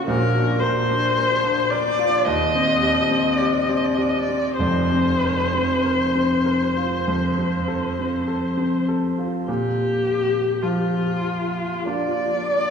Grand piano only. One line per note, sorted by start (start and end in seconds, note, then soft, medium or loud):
0.00 0.10 A#3 medium
0.00 0.10 C#4 soft
0.00 0.11 F4 medium
0.07 2.21 A#1 medium
0.07 2.22 A#2 medium
0.37 0.80 D4 medium
0.63 1.07 A#4 medium
0.91 1.34 D4 soft
1.17 1.60 A#4 medium
1.44 1.87 D4 medium
1.72 2.15 A#4 medium
1.99 2.26 F4 medium
2.26 4.55 D#2 medium
2.55 3.00 C4 medium
2.82 3.27 G4 medium
3.11 3.57 C4 medium
3.41 3.86 G4 medium
3.69 4.16 C4 soft
3.98 4.46 G4 medium
4.29 4.59 C4 soft
4.59 7.02 F1 medium
4.59 7.03 F2 medium
4.92 5.41 C4 soft
5.24 5.72 A#4 soft
5.54 6.02 C4 soft
5.85 6.34 A#4 soft
6.15 6.64 C4 soft
6.46 6.95 A#4 soft
6.77 7.07 F4 soft
7.07 9.44 F2 medium
7.38 7.86 C4 soft
7.68 8.15 A4 soft
7.99 8.46 C4 soft
8.28 8.76 A4 soft
8.57 9.06 C4 soft
8.88 9.36 A4 soft
9.18 9.47 F4 soft
9.48 12.70 A#2 medium
10.63 12.56 F3 soft
11.86 12.70 A#3 soft
11.86 12.70 D4 soft
11.86 12.70 F4 soft